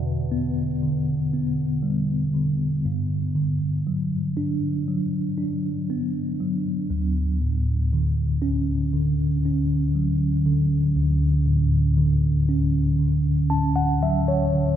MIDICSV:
0, 0, Header, 1, 2, 480
1, 0, Start_track
1, 0, Key_signature, 2, "major"
1, 0, Tempo, 1015228
1, 1343, Time_signature, 4, 2, 24, 8
1, 6980, End_track
2, 0, Start_track
2, 0, Title_t, "Tine electric piano"
2, 0, Program_c, 0, 4
2, 0, Control_c, 0, 64, 127
2, 0, Note_on_c, 0, 40, 57
2, 0, Note_on_c, 0, 47, 43
2, 0, Note_on_c, 0, 50, 42
2, 149, Note_on_c, 0, 59, 48
2, 384, Note_off_c, 0, 50, 0
2, 390, Note_on_c, 0, 50, 42
2, 605, Note_off_c, 0, 47, 0
2, 625, Note_off_c, 0, 59, 0
2, 631, Note_on_c, 0, 59, 44
2, 864, Note_on_c, 0, 55, 40
2, 1102, Note_off_c, 0, 50, 0
2, 1108, Note_on_c, 0, 50, 40
2, 1325, Note_off_c, 0, 40, 0
2, 1328, Note_off_c, 0, 59, 0
2, 1329, Note_off_c, 0, 55, 0
2, 1338, Note_off_c, 0, 50, 0
2, 1350, Control_c, 0, 64, 0
2, 1350, Note_on_c, 0, 43, 59
2, 1433, Control_c, 0, 64, 127
2, 1587, Note_on_c, 0, 50, 40
2, 1829, Note_on_c, 0, 54, 43
2, 2065, Note_on_c, 0, 62, 46
2, 2302, Note_off_c, 0, 54, 0
2, 2307, Note_on_c, 0, 54, 46
2, 2526, Note_off_c, 0, 50, 0
2, 2537, Note_off_c, 0, 62, 0
2, 2542, Note_on_c, 0, 62, 39
2, 2790, Note_on_c, 0, 59, 44
2, 3023, Note_off_c, 0, 54, 0
2, 3029, Note_on_c, 0, 54, 44
2, 3243, Note_off_c, 0, 62, 0
2, 3246, Note_off_c, 0, 43, 0
2, 3251, Note_off_c, 0, 59, 0
2, 3258, Note_off_c, 0, 54, 0
2, 3263, Note_on_c, 0, 38, 61
2, 3268, Control_c, 0, 64, 0
2, 3357, Control_c, 0, 64, 127
2, 3507, Note_on_c, 0, 45, 42
2, 3750, Note_on_c, 0, 50, 47
2, 3980, Note_on_c, 0, 61, 52
2, 4216, Note_off_c, 0, 50, 0
2, 4221, Note_on_c, 0, 50, 48
2, 4445, Note_off_c, 0, 45, 0
2, 4464, Note_off_c, 0, 61, 0
2, 4469, Note_on_c, 0, 61, 44
2, 4704, Note_on_c, 0, 54, 41
2, 4940, Note_off_c, 0, 50, 0
2, 4946, Note_on_c, 0, 50, 47
2, 5163, Note_off_c, 0, 38, 0
2, 5182, Note_on_c, 0, 38, 61
2, 5407, Note_off_c, 0, 61, 0
2, 5418, Note_on_c, 0, 45, 48
2, 5644, Note_off_c, 0, 54, 0
2, 5657, Note_off_c, 0, 50, 0
2, 5663, Note_on_c, 0, 50, 46
2, 5904, Note_on_c, 0, 61, 49
2, 6138, Note_off_c, 0, 50, 0
2, 6143, Note_on_c, 0, 50, 41
2, 6362, Note_off_c, 0, 45, 0
2, 6378, Note_off_c, 0, 61, 0
2, 6383, Note_on_c, 0, 61, 44
2, 6383, Note_on_c, 0, 81, 51
2, 6495, Note_off_c, 0, 81, 0
2, 6504, Note_on_c, 0, 78, 57
2, 6616, Note_off_c, 0, 78, 0
2, 6632, Note_on_c, 0, 54, 46
2, 6632, Note_on_c, 0, 76, 53
2, 6740, Note_off_c, 0, 76, 0
2, 6752, Note_on_c, 0, 73, 55
2, 6866, Note_off_c, 0, 50, 0
2, 6872, Note_on_c, 0, 50, 42
2, 6980, Note_off_c, 0, 38, 0
2, 6980, Note_off_c, 0, 50, 0
2, 6980, Note_off_c, 0, 54, 0
2, 6980, Note_off_c, 0, 61, 0
2, 6980, Note_off_c, 0, 73, 0
2, 6980, End_track
0, 0, End_of_file